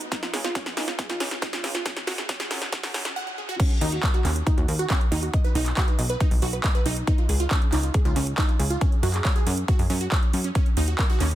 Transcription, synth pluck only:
0.12 0.22 D#4 loud
0.22 0.30 F4 medium
0.33 0.41 G#4 medium
0.44 0.55 F4 loud
0.55 0.66 C#4 loud
0.77 0.87 D#4 loud
0.88 0.95 F4 medium
0.98 1.06 G#4 medium
1.09 1.20 F4 loud
1.20 1.31 C#4 loud
1.42 1.52 D#4 loud
1.53 1.60 F4 medium
1.64 1.71 G#4 medium
1.74 1.85 F4 loud
1.85 1.96 C#4 loud
2.07 2.18 F#4 loud
2.18 2.25 G#4 medium
2.29 2.36 C#5 medium
2.40 2.50 G#4 loud
2.51 2.61 C#4 loud
2.72 2.83 F#4 loud
2.83 2.91 G#4 medium
2.94 2.99 G#5 medium
3.05 3.10 C#4 medium
3.16 3.26 F#5 loud
3.27 3.37 F#5 medium
3.38 3.48 G#4 medium
3.49 3.56 F#4 loud
3.60 3.70 C#4 loud
3.81 3.92 D#4 loud
3.92 4.00 F#4 medium
4.03 4.10 A#4 medium
4.14 4.24 F#4 loud
4.25 4.35 C#4 loud
4.46 4.57 D#4 loud
4.57 4.65 F#4 medium
4.68 4.76 A#4 medium
4.79 4.89 F#4 loud
4.90 5.00 C#4 loud
5.12 5.22 D#4 loud
5.23 5.30 F#4 medium
5.34 5.41 D#5 medium
5.44 5.55 B4 loud
5.55 5.66 D#4 loud
5.77 5.87 F#4 loud
5.88 5.95 B4 medium
5.99 6.06 D#5 medium
6.10 6.20 B4 loud
6.20 6.31 D#4 loud
6.42 6.53 F#4 loud
6.53 6.60 B4 medium
6.64 6.71 D#5 medium
6.75 6.85 B4 loud
6.86 6.96 D#4 loud
7.07 7.18 D#4 loud
7.18 7.26 F4 medium
7.29 7.36 G#4 medium
7.40 7.50 F4 loud
7.51 7.61 C#4 loud
7.73 7.83 D#4 loud
7.83 7.91 F4 medium
7.94 8.02 G#4 medium
8.05 8.16 F4 loud
8.16 8.26 C#4 loud
8.38 8.48 D#4 loud
8.49 8.56 F4 medium
8.60 8.67 G#4 medium
8.70 8.81 F4 loud
8.81 8.92 C#4 loud
9.03 9.13 F#4 loud
9.14 9.21 G#4 medium
9.25 9.32 C#5 medium
9.36 9.46 G#4 loud
9.46 9.57 C#4 loud
9.68 9.79 F#4 loud
9.79 9.86 G#4 medium
9.90 10.00 C#4 loud
10.01 10.05 F#4 medium
10.12 10.19 C#5 medium
10.33 10.38 C#4 medium
10.44 10.49 C#4 medium
10.55 10.66 C#4 loud
10.77 10.87 D#4 loud
10.88 10.95 F#4 medium
10.99 11.06 A#4 medium
11.10 11.20 F#4 loud
11.20 11.31 C#4 loud

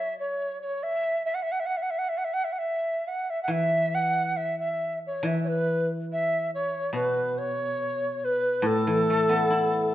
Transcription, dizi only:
0.00 0.18 E5 medium
0.19 0.59 C#5 medium
0.62 0.85 C#5 medium
0.83 1.25 E5 medium
1.25 1.36 E5 medium
1.34 1.44 F#5 medium
1.43 1.53 E5 medium
1.52 1.61 F#5 medium
1.60 1.67 E5 medium
1.66 1.79 F#5 medium
1.77 1.84 E5 medium
1.82 1.92 F#5 medium
1.90 2.00 E5 medium
1.98 2.10 F#5 medium
2.09 2.19 E5 medium
2.18 2.26 F#5 medium
2.24 2.35 E5 medium
2.33 2.46 F#5 medium
2.44 2.54 E5 medium
2.52 2.60 F#5 medium
2.59 3.09 E5 medium
3.08 3.32 F#5 medium
3.30 3.42 E5 medium
3.43 3.53 F#5 medium
3.51 3.96 E5 medium
3.95 4.38 F#5 medium
4.37 4.58 E5 medium
4.59 4.99 E5 medium
5.07 5.27 C#5 medium
5.26 5.40 E5 medium
5.44 5.49 C#5 soft
5.48 5.90 B4 medium
6.12 6.51 E5 medium
6.55 6.93 C#5 medium
6.95 7.39 B4 medium
7.38 8.26 C#5 medium
8.24 8.68 B4 medium
8.67 9.95 A4 medium

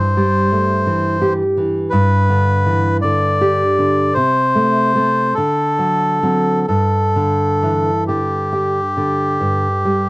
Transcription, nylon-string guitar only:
0.00 1.88 G2 soft
0.17 0.73 G3 soft
0.52 0.86 A3 soft
0.87 1.42 E3 soft
1.22 1.77 G4 medium
1.57 1.92 E3 soft
1.92 4.11 G2 medium
2.29 2.88 D3 soft
2.66 3.03 E3 soft
3.04 3.62 D3 soft
3.41 4.00 G4 soft
3.79 4.15 D3 soft
4.16 5.32 C3 medium
4.55 4.94 A3 soft
4.95 5.31 A3 soft
4.95 5.32 C4 soft
5.38 6.65 D3 medium
5.79 6.22 F#3 soft
6.23 6.64 F#3 soft
6.23 6.64 C4 soft
6.69 9.37 G2 soft
7.16 7.89 D3 soft
7.62 8.07 E3 soft
8.09 8.79 D3 soft
8.53 9.23 G4 soft
8.97 9.67 D3 soft
9.40 10.09 G2 soft
9.85 10.09 G3 soft

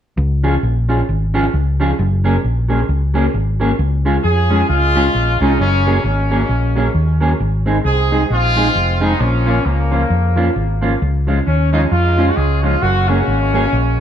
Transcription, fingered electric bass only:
0.18 0.56 C#2 loud
0.63 1.01 A#1 medium
1.09 1.47 G#1 medium
1.54 1.92 C#2 medium
1.99 2.37 F#1 loud
2.44 2.82 A#1 medium
2.89 3.27 C#2 medium
3.34 3.72 G#1 medium
3.79 4.17 C#2 loud
4.24 4.62 F2 medium
4.69 5.07 C#2 medium
5.15 5.37 A#1 medium
5.41 5.56 C2 medium
5.59 5.97 F#1 loud
6.04 6.42 G#1 medium
6.49 6.88 A#1 medium
6.94 7.33 D#2 medium
7.40 7.78 G#1 loud
7.85 8.23 C2 medium
8.30 8.68 A#1 medium
8.75 9.13 F1 medium
9.20 9.59 A#1 loud
9.65 10.04 C#2 medium
10.10 10.49 F2 medium
10.56 10.94 G#1 medium
11.02 11.40 C#2 loud
11.47 11.85 D#2 medium
11.91 12.30 F2 medium
12.37 12.75 C#2 medium
12.82 13.20 F#1 loud
13.28 13.66 G#1 medium
13.73 14.00 A#1 medium

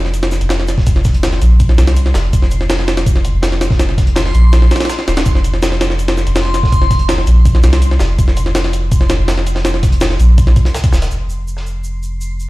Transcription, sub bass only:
0.00 0.40 F1 loud
0.41 1.40 F1 medium
1.42 1.77 A#1 medium
1.78 2.13 C2 medium
2.15 2.31 F1 medium
2.33 3.32 F1 loud
3.34 4.33 F1 medium
4.34 4.69 A#1 medium
5.07 5.24 D#1 medium
5.26 6.25 F1 loud
6.27 7.26 F1 medium
7.27 7.62 A#1 medium
7.64 7.99 C2 loud
8.00 8.17 F1 medium
8.18 9.18 F1 loud
9.19 10.18 F1 medium
10.20 10.55 A#1 medium
10.93 11.09 D#1 medium
11.11 12.49 F1 medium

